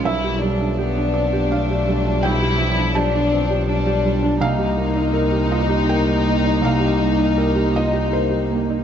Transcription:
<<
  \new Staff \with { instrumentName = "Felt piano" } { \time 3/4 \key c \phrygian \tempo 4 = 81 << { e''4. d''8 f''4 | g''4 a''4 r4 | f''4. ees''8 g''4 | f''4. ees''8 c''4 | } \\ { b,,16 g'16 g16 d'16 g'16 d'16 c'16 g'16 d'16 g'16 g16 d'16 | b,,16 g'16 g16 d'16 g'16 d'16 c'16 g'16 d'16 g'16 g16 d'16 | c,16 g'16 bes16 ees'16 bes'16 g'16 f'16 g'16 bes'16 g'16 bes16 ees'16 | c,16 g'16 bes16 ees'16 bes'16 g'16 f'16 g'16 bes'16 g'16 bes16 ees'16 | } >> }
  \new Staff \with { instrumentName = "Ambient pad" } { \time 3/4 \key c \phrygian <f d' g'>2.~ | <f d' g'>2. | <bes ees' g'>2.~ | <bes ees' g'>2. | }
  \new Staff \with { instrumentName = "Violin section" } { \time 3/4 \key c \phrygian e'8 d'8 d'2 | e'4 d'4 d'4 | ees'2.~ | ees'2. | }
  \new Staff \with { instrumentName = "Cello" } { \clef bass \time 3/4 \key c \phrygian g4 b4 a4 | g8 f8 f4 g4 | bes2.~ | bes2. | }
  \new Staff \with { instrumentName = "Double bass" } { \clef bass \time 3/4 \key c \phrygian b,,2.~ | b,,2. | c,2.~ | c,2. | }
>>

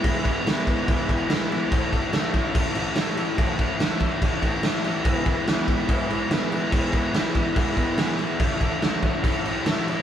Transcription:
<<
  \new Staff \with { instrumentName = "Transistor combo organ" } { \time 4/4 \key e \major \tempo 4 = 144 <gis' b' e''>8 r8 <gis' b' cis''>8 r8 <gis' b' e''>8 r8 <gis' b' e''>8 r8 | <a' cis'' e''>8 r8 <a' cis'' e''>8 r8 <a' cis'' e''>8 r8 <a' cis'' e''>8 r8 | <a' cis'' fis''>8 r8 <a' cis'' e''>8 r8 <a' cis'' fis''>8 r8 <a' cis'' e''>8 r8 | <gis' b' e''>8 r8 <gis' b' e''>8 r8 <gis' b' e''>8 r8 <gis' b' e''>8 r8 |
<gis' b' e''>8 r8 <gis' b' e''>8 r8 <gis' b' e''>8 b''8 <gis' b' e'' gis''>8 e''8 | <a' cis'' e''>8 r8 <a' cis'' fis''>8 r8 <a' cis'' e''>8 r8 <a' cis'' e''>8 r8 | }
  \new Staff \with { instrumentName = "Overdriven electric guitar" } { \time 4/4 \key e \major <e gis b e'>8 <gis b e'>8 <e gis b e'>8 <e gis b e'>8 <e gis b e'>8 <e gis b e'>8 <e gis b e'>8 <gis b e'>8 | <a, e a cis' e'>8 <a cis' e'>8 <e a cis' e'>8 <a, e a cis' e'>8 <e a cis' e'>8 <a, e a cis' e'>8 <e a cis' e'>8 <a cis' e'>8 | <a, e a cis' e'>8 <a cis' e'>8 <e a cis' e'>8 <a, e a cis' e'>8 <e a cis' e'>8 <a, e a cis' e'>8 <e a cis' e'>8 <a cis' e'>8 | <e gis b e'>8 <gis b e'>8 <e gis b e'>8 <e gis b e'>8 <e gis b e'>8 <e gis b e'>8 <e gis b e'>8 <gis b e'>8 |
<e gis b e'>8 <gis b e'>8 <e gis b e'>8 <e gis b e'>8 <e gis b e'>8 <e gis b e'>8 <e gis b e'>8 <gis b e'>8 | <a, e a cis' e'>8 <a cis' e'>8 <e a cis' e'>8 <a, e a cis' e'>8 <e a cis' e'>8 <a, e a cis' e'>8 <e a cis' e'>8 <a cis' e'>8 | }
  \new DrumStaff \with { instrumentName = "Drums" } \drummode { \time 4/4 <cymc bd>8 <cymc bd>8 <cymc sn>8 <cymc bd>8 <cymc bd>8 <cymc bd>8 <cymc sn>8 cymc8 | <cymc bd>8 <cymc bd>8 <cymc sn>8 <cymc bd>8 <cymc bd>8 cymc8 <cymc sn>8 cymc8 | <cymc bd>8 <cymc bd>8 <cymc sn>8 <cymc bd>8 <cymc bd>8 <cymc bd>8 <cymc sn>8 cymc8 | <cymc bd>8 <cymc bd>8 <cymc sn>8 <cymc bd>8 <cymc bd>8 cymc8 <cymc sn>8 cymc8 |
<cymc bd>8 <cymc bd>8 <cymc sn>8 <cymc bd>8 <cymc bd>8 <cymc bd>8 <cymc sn>8 cymc8 | <cymc bd>8 <cymc bd>8 <cymc sn>8 <cymc bd>8 <cymc bd>8 cymc8 <cymc sn>8 cymc8 | }
>>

